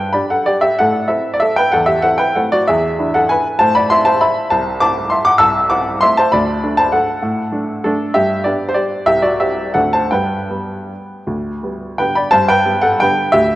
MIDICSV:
0, 0, Header, 1, 2, 480
1, 0, Start_track
1, 0, Key_signature, 1, "major"
1, 0, Tempo, 317125
1, 1172, Time_signature, 3, 2, 24, 8
1, 4996, Tempo, 302267
1, 11716, Tempo, 310720
1, 14116, Tempo, 335008
1, 15076, Tempo, 378788
1, 16996, Tempo, 357356
1, 18436, Tempo, 321543
1, 20243, End_track
2, 0, Start_track
2, 0, Title_t, "Upright piano"
2, 0, Program_c, 0, 0
2, 0, Control_c, 0, 64, 127
2, 0, Note_on_c, 0, 43, 59
2, 0, Note_on_c, 0, 71, 72
2, 0, Note_on_c, 0, 79, 88
2, 173, Note_off_c, 0, 71, 0
2, 190, Note_on_c, 0, 83, 93
2, 191, Note_off_c, 0, 43, 0
2, 193, Note_off_c, 0, 79, 0
2, 209, Note_on_c, 0, 74, 68
2, 210, Note_on_c, 0, 62, 43
2, 218, Control_c, 0, 64, 0
2, 221, Note_on_c, 0, 67, 44
2, 434, Note_off_c, 0, 74, 0
2, 441, Note_off_c, 0, 83, 0
2, 458, Note_on_c, 0, 78, 90
2, 468, Note_on_c, 0, 69, 65
2, 689, Note_off_c, 0, 69, 0
2, 692, Note_off_c, 0, 67, 0
2, 697, Note_on_c, 0, 74, 93
2, 700, Note_off_c, 0, 78, 0
2, 714, Note_on_c, 0, 67, 69
2, 919, Note_off_c, 0, 67, 0
2, 927, Note_on_c, 0, 76, 100
2, 939, Note_off_c, 0, 74, 0
2, 942, Note_on_c, 0, 67, 72
2, 1117, Note_off_c, 0, 62, 0
2, 1158, Note_off_c, 0, 67, 0
2, 1166, Note_off_c, 0, 76, 0
2, 1191, Note_on_c, 0, 78, 109
2, 1214, Note_on_c, 0, 45, 67
2, 1215, Note_on_c, 0, 69, 79
2, 1421, Control_c, 0, 64, 127
2, 1630, Note_off_c, 0, 69, 0
2, 1630, Note_on_c, 0, 76, 80
2, 1645, Note_on_c, 0, 60, 50
2, 1649, Note_off_c, 0, 45, 0
2, 1651, Note_off_c, 0, 78, 0
2, 1651, Note_on_c, 0, 64, 51
2, 1653, Note_on_c, 0, 69, 58
2, 1655, Control_c, 0, 64, 0
2, 1981, Note_off_c, 0, 69, 0
2, 1995, Note_off_c, 0, 76, 0
2, 2021, Note_on_c, 0, 74, 89
2, 2114, Note_on_c, 0, 76, 98
2, 2131, Note_off_c, 0, 74, 0
2, 2146, Note_on_c, 0, 69, 74
2, 2356, Note_off_c, 0, 69, 0
2, 2356, Note_off_c, 0, 76, 0
2, 2366, Note_on_c, 0, 79, 108
2, 2394, Note_on_c, 0, 71, 77
2, 2536, Note_off_c, 0, 60, 0
2, 2538, Note_off_c, 0, 64, 0
2, 2596, Note_off_c, 0, 71, 0
2, 2597, Note_off_c, 0, 79, 0
2, 2598, Note_on_c, 0, 78, 105
2, 2622, Note_on_c, 0, 69, 80
2, 2629, Note_on_c, 0, 40, 63
2, 2815, Note_on_c, 0, 76, 100
2, 2828, Note_off_c, 0, 69, 0
2, 2831, Note_off_c, 0, 78, 0
2, 2831, Note_on_c, 0, 67, 75
2, 2846, Control_c, 0, 64, 127
2, 3054, Note_off_c, 0, 67, 0
2, 3061, Note_on_c, 0, 78, 105
2, 3063, Note_off_c, 0, 76, 0
2, 3073, Note_on_c, 0, 69, 71
2, 3074, Note_off_c, 0, 40, 0
2, 3078, Note_on_c, 0, 60, 47
2, 3081, Note_on_c, 0, 64, 56
2, 3085, Control_c, 0, 64, 0
2, 3297, Note_on_c, 0, 79, 97
2, 3301, Note_off_c, 0, 69, 0
2, 3311, Note_on_c, 0, 71, 72
2, 3312, Note_off_c, 0, 78, 0
2, 3523, Note_off_c, 0, 60, 0
2, 3524, Note_off_c, 0, 64, 0
2, 3547, Note_off_c, 0, 71, 0
2, 3558, Note_off_c, 0, 79, 0
2, 3560, Note_on_c, 0, 78, 81
2, 3574, Note_on_c, 0, 57, 48
2, 3575, Note_on_c, 0, 69, 67
2, 3583, Note_on_c, 0, 60, 51
2, 3588, Note_on_c, 0, 64, 51
2, 3802, Note_off_c, 0, 69, 0
2, 3812, Note_off_c, 0, 78, 0
2, 3817, Note_on_c, 0, 74, 107
2, 3833, Note_on_c, 0, 66, 74
2, 4006, Note_off_c, 0, 57, 0
2, 4011, Note_off_c, 0, 60, 0
2, 4014, Note_off_c, 0, 64, 0
2, 4044, Note_off_c, 0, 66, 0
2, 4052, Note_off_c, 0, 74, 0
2, 4052, Note_on_c, 0, 76, 104
2, 4074, Note_on_c, 0, 68, 79
2, 4075, Note_on_c, 0, 40, 71
2, 4294, Control_c, 0, 64, 127
2, 4509, Note_off_c, 0, 40, 0
2, 4533, Note_on_c, 0, 62, 53
2, 4535, Note_on_c, 0, 64, 56
2, 4714, Note_off_c, 0, 68, 0
2, 4751, Note_off_c, 0, 76, 0
2, 4757, Note_on_c, 0, 78, 99
2, 4774, Note_on_c, 0, 69, 79
2, 4982, Note_on_c, 0, 80, 105
2, 4990, Note_off_c, 0, 69, 0
2, 4998, Note_off_c, 0, 78, 0
2, 5009, Note_on_c, 0, 71, 79
2, 5012, Control_c, 0, 64, 0
2, 5432, Note_off_c, 0, 62, 0
2, 5433, Note_off_c, 0, 64, 0
2, 5454, Note_on_c, 0, 81, 127
2, 5457, Note_off_c, 0, 71, 0
2, 5476, Note_on_c, 0, 45, 72
2, 5477, Note_off_c, 0, 80, 0
2, 5479, Note_on_c, 0, 72, 92
2, 5700, Note_off_c, 0, 72, 0
2, 5704, Note_off_c, 0, 81, 0
2, 5708, Note_on_c, 0, 83, 118
2, 5730, Note_on_c, 0, 74, 84
2, 5811, Control_c, 0, 64, 127
2, 5940, Note_off_c, 0, 45, 0
2, 5947, Note_on_c, 0, 84, 110
2, 5948, Note_off_c, 0, 74, 0
2, 5953, Note_off_c, 0, 83, 0
2, 5962, Note_on_c, 0, 60, 55
2, 5968, Note_on_c, 0, 64, 55
2, 5970, Note_on_c, 0, 76, 82
2, 6183, Note_on_c, 0, 81, 105
2, 6189, Note_off_c, 0, 76, 0
2, 6193, Note_off_c, 0, 84, 0
2, 6200, Note_on_c, 0, 72, 78
2, 6426, Note_off_c, 0, 72, 0
2, 6433, Note_on_c, 0, 83, 109
2, 6435, Note_off_c, 0, 81, 0
2, 6442, Note_on_c, 0, 76, 89
2, 6460, Control_c, 0, 64, 0
2, 6855, Note_off_c, 0, 60, 0
2, 6858, Note_off_c, 0, 64, 0
2, 6884, Note_off_c, 0, 76, 0
2, 6905, Note_on_c, 0, 81, 99
2, 6912, Note_off_c, 0, 83, 0
2, 6912, Note_on_c, 0, 72, 74
2, 6921, Note_on_c, 0, 36, 72
2, 7227, Control_c, 0, 64, 127
2, 7347, Note_off_c, 0, 72, 0
2, 7370, Note_off_c, 0, 36, 0
2, 7376, Note_off_c, 0, 81, 0
2, 7382, Note_on_c, 0, 86, 114
2, 7394, Note_on_c, 0, 60, 54
2, 7404, Note_on_c, 0, 81, 94
2, 7410, Note_on_c, 0, 64, 57
2, 7848, Note_on_c, 0, 84, 90
2, 7851, Note_off_c, 0, 81, 0
2, 7874, Note_off_c, 0, 86, 0
2, 7875, Note_on_c, 0, 76, 68
2, 7894, Control_c, 0, 64, 0
2, 8088, Note_on_c, 0, 86, 126
2, 8101, Note_off_c, 0, 76, 0
2, 8104, Note_off_c, 0, 84, 0
2, 8107, Note_on_c, 0, 78, 87
2, 8287, Note_off_c, 0, 60, 0
2, 8295, Note_off_c, 0, 64, 0
2, 8303, Note_on_c, 0, 88, 125
2, 8316, Note_on_c, 0, 81, 94
2, 8323, Note_off_c, 0, 78, 0
2, 8323, Note_on_c, 0, 36, 75
2, 8330, Note_off_c, 0, 86, 0
2, 8601, Control_c, 0, 64, 127
2, 8766, Note_off_c, 0, 81, 0
2, 8789, Note_off_c, 0, 36, 0
2, 8793, Note_off_c, 0, 88, 0
2, 8800, Note_on_c, 0, 86, 111
2, 8810, Note_on_c, 0, 60, 50
2, 8818, Note_on_c, 0, 78, 83
2, 8822, Note_on_c, 0, 64, 57
2, 9265, Note_off_c, 0, 60, 0
2, 9272, Note_off_c, 0, 64, 0
2, 9285, Note_off_c, 0, 78, 0
2, 9290, Note_on_c, 0, 84, 113
2, 9311, Note_off_c, 0, 86, 0
2, 9311, Note_on_c, 0, 57, 47
2, 9316, Note_on_c, 0, 76, 88
2, 9321, Note_on_c, 0, 60, 51
2, 9328, Note_on_c, 0, 64, 55
2, 9334, Control_c, 0, 64, 0
2, 9550, Note_off_c, 0, 76, 0
2, 9555, Note_off_c, 0, 84, 0
2, 9555, Note_on_c, 0, 81, 111
2, 9581, Note_on_c, 0, 72, 88
2, 9757, Note_off_c, 0, 57, 0
2, 9762, Note_off_c, 0, 60, 0
2, 9766, Note_off_c, 0, 64, 0
2, 9786, Note_on_c, 0, 83, 113
2, 9799, Note_off_c, 0, 72, 0
2, 9802, Note_off_c, 0, 81, 0
2, 9806, Note_on_c, 0, 38, 72
2, 9806, Note_on_c, 0, 74, 87
2, 10114, Control_c, 0, 64, 127
2, 10265, Note_off_c, 0, 38, 0
2, 10287, Note_on_c, 0, 57, 54
2, 10293, Note_on_c, 0, 62, 61
2, 10474, Note_off_c, 0, 74, 0
2, 10511, Note_on_c, 0, 81, 109
2, 10514, Note_off_c, 0, 83, 0
2, 10533, Note_on_c, 0, 72, 74
2, 10744, Note_on_c, 0, 78, 98
2, 10758, Note_off_c, 0, 72, 0
2, 10759, Note_on_c, 0, 69, 74
2, 10764, Note_off_c, 0, 81, 0
2, 10783, Control_c, 0, 64, 0
2, 11182, Note_off_c, 0, 57, 0
2, 11184, Note_off_c, 0, 62, 0
2, 11228, Note_on_c, 0, 45, 68
2, 11485, Control_c, 0, 64, 127
2, 11692, Note_off_c, 0, 45, 0
2, 11697, Note_on_c, 0, 57, 52
2, 11707, Note_on_c, 0, 62, 60
2, 12126, Note_off_c, 0, 69, 0
2, 12137, Note_off_c, 0, 57, 0
2, 12143, Note_off_c, 0, 62, 0
2, 12181, Note_off_c, 0, 78, 0
2, 12195, Note_on_c, 0, 69, 86
2, 12205, Note_on_c, 0, 57, 52
2, 12215, Control_c, 0, 64, 0
2, 12221, Note_on_c, 0, 62, 75
2, 12630, Note_off_c, 0, 57, 0
2, 12652, Note_off_c, 0, 62, 0
2, 12656, Note_on_c, 0, 76, 103
2, 12662, Note_on_c, 0, 43, 65
2, 12664, Note_on_c, 0, 67, 92
2, 12672, Note_off_c, 0, 69, 0
2, 12914, Control_c, 0, 64, 127
2, 13106, Note_off_c, 0, 67, 0
2, 13120, Note_on_c, 0, 74, 86
2, 13124, Note_off_c, 0, 43, 0
2, 13135, Note_off_c, 0, 76, 0
2, 13142, Note_on_c, 0, 59, 50
2, 13145, Note_on_c, 0, 62, 52
2, 13147, Note_on_c, 0, 67, 62
2, 13162, Control_c, 0, 64, 0
2, 13483, Note_off_c, 0, 67, 0
2, 13494, Note_off_c, 0, 74, 0
2, 13497, Note_on_c, 0, 72, 90
2, 13586, Note_on_c, 0, 74, 90
2, 13605, Note_on_c, 0, 67, 65
2, 13624, Note_off_c, 0, 72, 0
2, 14052, Note_off_c, 0, 59, 0
2, 14054, Note_off_c, 0, 62, 0
2, 14067, Note_off_c, 0, 67, 0
2, 14078, Note_on_c, 0, 76, 110
2, 14082, Note_on_c, 0, 36, 63
2, 14090, Note_on_c, 0, 67, 80
2, 14093, Note_off_c, 0, 74, 0
2, 14312, Note_off_c, 0, 67, 0
2, 14313, Note_on_c, 0, 74, 88
2, 14323, Note_off_c, 0, 76, 0
2, 14326, Note_on_c, 0, 66, 69
2, 14365, Control_c, 0, 64, 127
2, 14546, Note_off_c, 0, 36, 0
2, 14551, Note_off_c, 0, 66, 0
2, 14562, Note_off_c, 0, 74, 0
2, 14564, Note_on_c, 0, 76, 94
2, 14570, Note_on_c, 0, 67, 72
2, 14576, Note_on_c, 0, 60, 49
2, 15025, Note_off_c, 0, 60, 0
2, 15037, Note_off_c, 0, 67, 0
2, 15050, Note_on_c, 0, 78, 95
2, 15059, Note_on_c, 0, 69, 69
2, 15063, Note_on_c, 0, 50, 42
2, 15067, Note_on_c, 0, 38, 58
2, 15069, Note_off_c, 0, 76, 0
2, 15075, Note_on_c, 0, 57, 45
2, 15077, Note_on_c, 0, 60, 44
2, 15089, Control_c, 0, 64, 0
2, 15278, Note_off_c, 0, 69, 0
2, 15291, Note_off_c, 0, 78, 0
2, 15297, Note_on_c, 0, 81, 97
2, 15306, Control_c, 0, 64, 127
2, 15310, Note_on_c, 0, 72, 69
2, 15482, Note_off_c, 0, 50, 0
2, 15487, Note_off_c, 0, 57, 0
2, 15488, Note_off_c, 0, 60, 0
2, 15516, Note_off_c, 0, 38, 0
2, 15522, Note_off_c, 0, 72, 0
2, 15523, Note_on_c, 0, 79, 85
2, 15531, Note_off_c, 0, 81, 0
2, 15533, Note_on_c, 0, 43, 59
2, 15536, Note_on_c, 0, 71, 72
2, 15554, Control_c, 0, 64, 0
2, 15821, Control_c, 0, 64, 127
2, 16007, Note_off_c, 0, 43, 0
2, 16009, Note_on_c, 0, 55, 40
2, 16016, Note_on_c, 0, 59, 48
2, 16543, Control_c, 0, 64, 0
2, 16938, Note_off_c, 0, 55, 0
2, 16941, Note_off_c, 0, 59, 0
2, 16992, Note_on_c, 0, 38, 60
2, 17291, Control_c, 0, 64, 127
2, 17459, Note_off_c, 0, 38, 0
2, 17480, Note_on_c, 0, 59, 46
2, 17484, Note_on_c, 0, 55, 43
2, 17912, Note_off_c, 0, 71, 0
2, 17918, Note_off_c, 0, 59, 0
2, 17920, Note_off_c, 0, 55, 0
2, 17932, Note_off_c, 0, 79, 0
2, 17952, Note_on_c, 0, 79, 90
2, 17962, Note_on_c, 0, 71, 71
2, 17963, Note_on_c, 0, 50, 40
2, 17974, Note_on_c, 0, 59, 48
2, 17978, Note_on_c, 0, 55, 47
2, 17980, Control_c, 0, 64, 0
2, 18182, Note_on_c, 0, 83, 100
2, 18190, Note_off_c, 0, 71, 0
2, 18199, Note_on_c, 0, 74, 73
2, 18202, Note_off_c, 0, 79, 0
2, 18386, Note_off_c, 0, 50, 0
2, 18388, Note_on_c, 0, 81, 117
2, 18393, Note_off_c, 0, 59, 0
2, 18394, Note_on_c, 0, 72, 96
2, 18395, Note_off_c, 0, 55, 0
2, 18407, Note_on_c, 0, 43, 74
2, 18413, Note_off_c, 0, 74, 0
2, 18421, Note_off_c, 0, 83, 0
2, 18628, Note_off_c, 0, 72, 0
2, 18642, Note_off_c, 0, 81, 0
2, 18645, Note_on_c, 0, 79, 120
2, 18655, Note_on_c, 0, 71, 90
2, 18735, Control_c, 0, 64, 127
2, 18878, Note_off_c, 0, 43, 0
2, 18892, Note_on_c, 0, 55, 55
2, 18902, Note_on_c, 0, 59, 60
2, 19117, Note_off_c, 0, 71, 0
2, 19137, Note_on_c, 0, 78, 108
2, 19147, Note_off_c, 0, 79, 0
2, 19153, Note_on_c, 0, 69, 82
2, 19353, Note_off_c, 0, 55, 0
2, 19358, Note_off_c, 0, 59, 0
2, 19391, Note_off_c, 0, 69, 0
2, 19401, Note_off_c, 0, 78, 0
2, 19414, Note_on_c, 0, 79, 112
2, 19433, Note_on_c, 0, 50, 52
2, 19435, Control_c, 0, 64, 0
2, 19436, Note_on_c, 0, 71, 81
2, 19442, Note_on_c, 0, 55, 57
2, 19447, Note_on_c, 0, 59, 60
2, 19851, Note_off_c, 0, 50, 0
2, 19856, Note_off_c, 0, 55, 0
2, 19859, Note_off_c, 0, 59, 0
2, 19867, Note_off_c, 0, 71, 0
2, 19888, Note_off_c, 0, 79, 0
2, 19892, Note_on_c, 0, 76, 116
2, 19911, Note_on_c, 0, 67, 91
2, 19913, Note_on_c, 0, 38, 72
2, 20139, Control_c, 0, 64, 127
2, 20243, Note_off_c, 0, 38, 0
2, 20243, Note_off_c, 0, 67, 0
2, 20243, Note_off_c, 0, 76, 0
2, 20243, End_track
0, 0, End_of_file